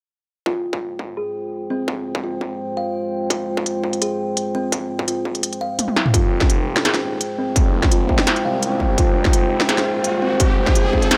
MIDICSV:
0, 0, Header, 1, 6, 480
1, 0, Start_track
1, 0, Key_signature, -4, "minor"
1, 0, Tempo, 355030
1, 625, Time_signature, 4, 2, 24, 8
1, 15107, End_track
2, 0, Start_track
2, 0, Title_t, "Analog synth pad"
2, 0, Program_c, 0, 89
2, 625, Note_on_c, 0, 79, 87
2, 627, Note_on_c, 0, 56, 78
2, 627, Note_on_c, 0, 72, 77
2, 628, Note_on_c, 0, 65, 73
2, 8251, Note_off_c, 0, 79, 0
2, 8252, Note_off_c, 0, 56, 0
2, 8252, Note_off_c, 0, 65, 0
2, 8252, Note_off_c, 0, 72, 0
2, 8298, Note_on_c, 0, 79, 75
2, 8299, Note_on_c, 0, 72, 91
2, 8300, Note_on_c, 0, 56, 82
2, 8303, Note_on_c, 0, 65, 76
2, 15107, Note_off_c, 0, 56, 0
2, 15107, Note_off_c, 0, 65, 0
2, 15107, Note_off_c, 0, 72, 0
2, 15107, Note_off_c, 0, 79, 0
2, 15107, End_track
3, 0, Start_track
3, 0, Title_t, "Kalimba"
3, 0, Program_c, 1, 108
3, 626, Note_on_c, 1, 65, 94
3, 766, Note_off_c, 1, 65, 0
3, 1583, Note_on_c, 1, 68, 73
3, 2281, Note_off_c, 1, 68, 0
3, 2303, Note_on_c, 1, 60, 94
3, 2444, Note_off_c, 1, 60, 0
3, 3023, Note_on_c, 1, 65, 70
3, 3252, Note_off_c, 1, 65, 0
3, 3747, Note_on_c, 1, 77, 73
3, 4442, Note_off_c, 1, 77, 0
3, 4468, Note_on_c, 1, 65, 91
3, 4607, Note_off_c, 1, 65, 0
3, 5429, Note_on_c, 1, 68, 80
3, 6124, Note_off_c, 1, 68, 0
3, 6149, Note_on_c, 1, 60, 92
3, 6287, Note_off_c, 1, 60, 0
3, 6866, Note_on_c, 1, 65, 74
3, 7094, Note_off_c, 1, 65, 0
3, 7586, Note_on_c, 1, 77, 75
3, 8282, Note_off_c, 1, 77, 0
3, 8301, Note_on_c, 1, 65, 99
3, 8444, Note_off_c, 1, 65, 0
3, 9260, Note_on_c, 1, 68, 77
3, 9959, Note_off_c, 1, 68, 0
3, 9983, Note_on_c, 1, 60, 91
3, 10124, Note_off_c, 1, 60, 0
3, 10704, Note_on_c, 1, 65, 75
3, 10933, Note_off_c, 1, 65, 0
3, 11423, Note_on_c, 1, 77, 78
3, 12121, Note_off_c, 1, 77, 0
3, 12140, Note_on_c, 1, 65, 95
3, 12283, Note_off_c, 1, 65, 0
3, 13100, Note_on_c, 1, 68, 78
3, 13799, Note_off_c, 1, 68, 0
3, 13821, Note_on_c, 1, 60, 95
3, 13963, Note_off_c, 1, 60, 0
3, 14545, Note_on_c, 1, 65, 78
3, 14773, Note_off_c, 1, 65, 0
3, 15107, End_track
4, 0, Start_track
4, 0, Title_t, "Detuned saw bass"
4, 0, Program_c, 2, 39
4, 8301, Note_on_c, 2, 29, 97
4, 9248, Note_off_c, 2, 29, 0
4, 9262, Note_on_c, 2, 32, 85
4, 9485, Note_off_c, 2, 32, 0
4, 9502, Note_on_c, 2, 27, 87
4, 9725, Note_off_c, 2, 27, 0
4, 10221, Note_on_c, 2, 29, 98
4, 11168, Note_off_c, 2, 29, 0
4, 11427, Note_on_c, 2, 36, 82
4, 12131, Note_off_c, 2, 36, 0
4, 12140, Note_on_c, 2, 29, 95
4, 13087, Note_off_c, 2, 29, 0
4, 13106, Note_on_c, 2, 27, 77
4, 14051, Note_off_c, 2, 27, 0
4, 14062, Note_on_c, 2, 29, 99
4, 15009, Note_off_c, 2, 29, 0
4, 15107, End_track
5, 0, Start_track
5, 0, Title_t, "Riser"
5, 0, Program_c, 3, 103
5, 8302, Note_on_c, 3, 60, 80
5, 15107, Note_off_c, 3, 60, 0
5, 15107, End_track
6, 0, Start_track
6, 0, Title_t, "Drums"
6, 623, Note_on_c, 9, 36, 102
6, 758, Note_off_c, 9, 36, 0
6, 987, Note_on_c, 9, 36, 95
6, 1122, Note_off_c, 9, 36, 0
6, 1343, Note_on_c, 9, 36, 57
6, 1478, Note_off_c, 9, 36, 0
6, 2541, Note_on_c, 9, 36, 112
6, 2676, Note_off_c, 9, 36, 0
6, 2905, Note_on_c, 9, 36, 105
6, 3041, Note_off_c, 9, 36, 0
6, 3261, Note_on_c, 9, 36, 59
6, 3396, Note_off_c, 9, 36, 0
6, 4465, Note_on_c, 9, 36, 114
6, 4468, Note_on_c, 9, 42, 76
6, 4600, Note_off_c, 9, 36, 0
6, 4603, Note_off_c, 9, 42, 0
6, 4831, Note_on_c, 9, 36, 106
6, 4951, Note_on_c, 9, 42, 62
6, 4966, Note_off_c, 9, 36, 0
6, 5086, Note_off_c, 9, 42, 0
6, 5186, Note_on_c, 9, 36, 60
6, 5315, Note_on_c, 9, 42, 37
6, 5321, Note_off_c, 9, 36, 0
6, 5430, Note_off_c, 9, 42, 0
6, 5430, Note_on_c, 9, 42, 78
6, 5566, Note_off_c, 9, 42, 0
6, 5907, Note_on_c, 9, 42, 61
6, 6042, Note_off_c, 9, 42, 0
6, 6385, Note_on_c, 9, 36, 118
6, 6386, Note_on_c, 9, 42, 70
6, 6521, Note_off_c, 9, 36, 0
6, 6521, Note_off_c, 9, 42, 0
6, 6748, Note_on_c, 9, 36, 105
6, 6866, Note_on_c, 9, 42, 59
6, 6884, Note_off_c, 9, 36, 0
6, 7001, Note_off_c, 9, 42, 0
6, 7103, Note_on_c, 9, 36, 63
6, 7231, Note_on_c, 9, 42, 36
6, 7238, Note_off_c, 9, 36, 0
6, 7343, Note_off_c, 9, 42, 0
6, 7343, Note_on_c, 9, 42, 76
6, 7471, Note_off_c, 9, 42, 0
6, 7471, Note_on_c, 9, 42, 32
6, 7606, Note_off_c, 9, 42, 0
6, 7825, Note_on_c, 9, 42, 61
6, 7825, Note_on_c, 9, 48, 60
6, 7948, Note_off_c, 9, 48, 0
6, 7948, Note_on_c, 9, 48, 62
6, 7960, Note_off_c, 9, 42, 0
6, 8064, Note_on_c, 9, 38, 84
6, 8084, Note_off_c, 9, 48, 0
6, 8188, Note_on_c, 9, 45, 79
6, 8199, Note_off_c, 9, 38, 0
6, 8299, Note_on_c, 9, 36, 110
6, 8302, Note_on_c, 9, 42, 77
6, 8323, Note_off_c, 9, 45, 0
6, 8434, Note_off_c, 9, 36, 0
6, 8438, Note_off_c, 9, 42, 0
6, 8662, Note_on_c, 9, 36, 104
6, 8666, Note_on_c, 9, 40, 56
6, 8783, Note_on_c, 9, 42, 63
6, 8798, Note_off_c, 9, 36, 0
6, 8802, Note_off_c, 9, 40, 0
6, 8919, Note_off_c, 9, 42, 0
6, 9147, Note_on_c, 9, 40, 83
6, 9262, Note_on_c, 9, 38, 113
6, 9262, Note_on_c, 9, 42, 81
6, 9282, Note_off_c, 9, 40, 0
6, 9387, Note_off_c, 9, 42, 0
6, 9387, Note_on_c, 9, 40, 73
6, 9387, Note_on_c, 9, 42, 35
6, 9397, Note_off_c, 9, 38, 0
6, 9522, Note_off_c, 9, 40, 0
6, 9522, Note_off_c, 9, 42, 0
6, 9744, Note_on_c, 9, 42, 64
6, 9879, Note_off_c, 9, 42, 0
6, 10219, Note_on_c, 9, 36, 115
6, 10221, Note_on_c, 9, 42, 78
6, 10354, Note_off_c, 9, 36, 0
6, 10357, Note_off_c, 9, 42, 0
6, 10584, Note_on_c, 9, 36, 107
6, 10588, Note_on_c, 9, 40, 55
6, 10701, Note_on_c, 9, 42, 64
6, 10719, Note_off_c, 9, 36, 0
6, 10723, Note_off_c, 9, 40, 0
6, 10836, Note_off_c, 9, 42, 0
6, 10939, Note_on_c, 9, 36, 61
6, 11065, Note_on_c, 9, 40, 83
6, 11074, Note_off_c, 9, 36, 0
6, 11181, Note_on_c, 9, 38, 118
6, 11181, Note_on_c, 9, 42, 79
6, 11200, Note_off_c, 9, 40, 0
6, 11305, Note_off_c, 9, 42, 0
6, 11305, Note_on_c, 9, 42, 35
6, 11316, Note_off_c, 9, 38, 0
6, 11440, Note_off_c, 9, 42, 0
6, 11662, Note_on_c, 9, 42, 66
6, 11797, Note_off_c, 9, 42, 0
6, 11900, Note_on_c, 9, 36, 60
6, 12035, Note_off_c, 9, 36, 0
6, 12139, Note_on_c, 9, 36, 121
6, 12141, Note_on_c, 9, 42, 81
6, 12275, Note_off_c, 9, 36, 0
6, 12276, Note_off_c, 9, 42, 0
6, 12504, Note_on_c, 9, 36, 111
6, 12506, Note_on_c, 9, 40, 51
6, 12618, Note_on_c, 9, 42, 63
6, 12639, Note_off_c, 9, 36, 0
6, 12641, Note_off_c, 9, 40, 0
6, 12753, Note_off_c, 9, 42, 0
6, 12986, Note_on_c, 9, 40, 76
6, 13098, Note_on_c, 9, 38, 127
6, 13098, Note_on_c, 9, 42, 82
6, 13121, Note_off_c, 9, 40, 0
6, 13222, Note_off_c, 9, 42, 0
6, 13222, Note_on_c, 9, 40, 75
6, 13222, Note_on_c, 9, 42, 36
6, 13234, Note_off_c, 9, 38, 0
6, 13358, Note_off_c, 9, 40, 0
6, 13358, Note_off_c, 9, 42, 0
6, 13578, Note_on_c, 9, 42, 64
6, 13713, Note_off_c, 9, 42, 0
6, 14059, Note_on_c, 9, 42, 79
6, 14061, Note_on_c, 9, 36, 124
6, 14194, Note_off_c, 9, 42, 0
6, 14196, Note_off_c, 9, 36, 0
6, 14425, Note_on_c, 9, 36, 110
6, 14427, Note_on_c, 9, 40, 51
6, 14539, Note_on_c, 9, 42, 62
6, 14560, Note_off_c, 9, 36, 0
6, 14562, Note_off_c, 9, 40, 0
6, 14675, Note_off_c, 9, 42, 0
6, 14781, Note_on_c, 9, 36, 63
6, 14903, Note_on_c, 9, 42, 38
6, 14916, Note_off_c, 9, 36, 0
6, 15020, Note_off_c, 9, 42, 0
6, 15020, Note_on_c, 9, 38, 120
6, 15020, Note_on_c, 9, 42, 80
6, 15107, Note_off_c, 9, 38, 0
6, 15107, Note_off_c, 9, 42, 0
6, 15107, End_track
0, 0, End_of_file